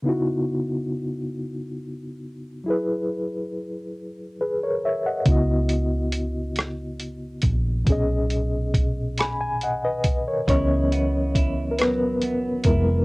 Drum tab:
HH |------|------|xxxxxx|xxxxxx|
SD |------|------|---r--|---r--|
BD |------|------|o----o|o-o--o|

HH |xxxxxx|
SD |---r--|
BD |o-o--o|